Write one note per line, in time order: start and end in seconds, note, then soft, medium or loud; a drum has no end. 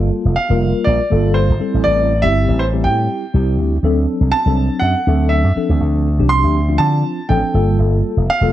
0.00 0.33 G3 medium
0.00 0.33 A#3 medium
0.00 0.34 F4 medium
0.00 0.34 A4 medium
0.25 0.35 F1 medium
0.36 0.87 F5 medium
0.49 0.72 F1 medium
0.49 1.00 G3 medium
0.49 1.00 A#3 medium
0.49 1.01 F4 medium
0.49 1.01 A#4 medium
0.84 0.98 A#1 medium
0.84 1.36 D5 medium
1.10 1.45 G1 medium
1.10 1.52 G3 medium
1.10 1.52 A#3 medium
1.10 1.52 F4 medium
1.10 1.52 A4 medium
1.34 1.81 C5 medium
1.49 1.59 G1 medium
1.59 2.11 G3 medium
1.59 2.11 C4 medium
1.59 2.11 E4 medium
1.59 2.12 A4 medium
1.59 muted slap bass stroke soft
1.74 1.84 A1 medium
1.84 2.25 A1 loud
1.84 2.23 D5 medium
2.22 2.45 G1 medium
2.22 2.63 G3 medium
2.22 2.63 C4 medium
2.22 2.63 E4 medium
2.22 2.64 G4 medium
2.22 2.60 E5 medium
2.48 2.87 A1 medium
2.59 2.65 C5 medium
2.73 3.23 G3 medium
2.73 3.24 C4 medium
2.73 3.24 E4 medium
2.73 3.24 G4 medium
2.84 3.07 A2 medium
2.84 3.54 G5 medium
3.34 3.56 C2 medium
3.34 3.75 G3 medium
3.34 3.75 C4 medium
3.34 3.75 E4 medium
3.34 3.75 G4 medium
3.58 3.83 D2 medium
3.83 4.05 D2 medium
3.83 4.34 F#3 medium
3.83 4.34 C4 medium
3.83 4.35 D4 medium
3.83 4.35 A4 medium
4.21 4.31 C2 medium
4.32 4.83 A5 loud
4.46 4.68 C2 medium
4.46 4.96 F#3 medium
4.46 4.97 C4 medium
4.46 4.97 D4 medium
4.46 4.97 A4 medium
4.79 4.93 F#2 medium
4.79 5.32 F#5 medium
5.07 5.45 D2 medium
5.07 5.48 F#3 medium
5.07 5.48 C4 medium
5.07 5.48 D4 medium
5.07 5.49 A4 medium
5.29 5.76 E5 medium
5.45 5.55 F#2 medium
5.55 6.07 F3 medium
5.55 6.07 C4 medium
5.55 6.07 D4 medium
5.55 6.08 A4 medium
5.55 muted slap bass stroke soft
5.69 5.80 D2 medium
5.81 6.21 D2 medium
6.19 6.41 C2 medium
6.19 6.59 F3 medium
6.19 6.59 C4 medium
6.19 6.59 D4 medium
6.19 6.59 G4 medium
6.29 6.81 C6 loud
6.44 6.80 D2 medium
6.68 7.19 F3 medium
6.68 7.19 C4 medium
6.68 7.19 D4 medium
6.68 7.20 F4 medium
6.78 7.02 D3 loud
6.78 7.30 A5 medium
7.28 7.41 A1 medium
7.28 7.54 F3 medium
7.28 7.54 C4 medium
7.28 7.54 D4 medium
7.28 7.54 A4 medium
7.28 7.75 G5 medium
7.53 7.76 G1 medium
7.53 8.25 G3 medium
7.53 8.26 A#3 medium
7.53 8.26 F4 medium
7.53 8.26 A4 medium
7.78 8.01 G1 medium
8.17 8.27 F1 medium
8.30 8.53 F5 loud
8.41 8.53 F1 medium
8.41 8.53 G3 medium
8.41 8.53 A#3 medium
8.41 8.53 F4 medium
8.41 8.53 A4 loud